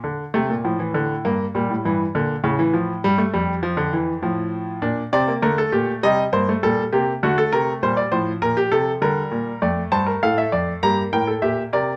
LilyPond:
<<
  \new Staff \with { instrumentName = "Grand piano" } { \time 4/4 \key g \minor \tempo 4 = 100 << { r1 | r1 | r1 | r1 |
r8 a''8 f''16 e''16 d''8 bes''8 g''8 e''8 d''8 | } \\ { r1 | r1 | r8 d''8 bes'16 a'16 g'8 ees''8 c''8 a'8 g'8 | fis'16 a'16 bes'8 c''16 d''16 c''8 bes'16 g'16 a'8 bes'4 |
d''8 c''16 bes'16 a'4 g'8 bes'16 a'16 g'8 bes'8 | } >> }
  \new Staff \with { instrumentName = "Grand piano" } { \clef bass \time 4/4 \key g \minor << { r8 a8 f16 e16 d8 bes8 g8 e8 d8 | cis16 e16 f8 g16 a16 g8 f16 d16 e8 f4 | d'8 c'16 bes16 a4 g8 bes16 a16 g8 bes8 | a4 g8 f4. g4 |
a2 bes2 | } \\ { d8 c16 bes,16 a,4 g,8 bes,16 a,16 g,8 bes,8 | a,4 g,8 f,4. a,4 | bes,8 c8 d8 bes,8 c8 g,8 bes,8 c8 | d8 c8 bes,8 a,8 bes,8 c8 d8 bes,8 |
f,8 g,8 a,8 f,8 g,8 a,8 bes,8 c8 | } >> }
>>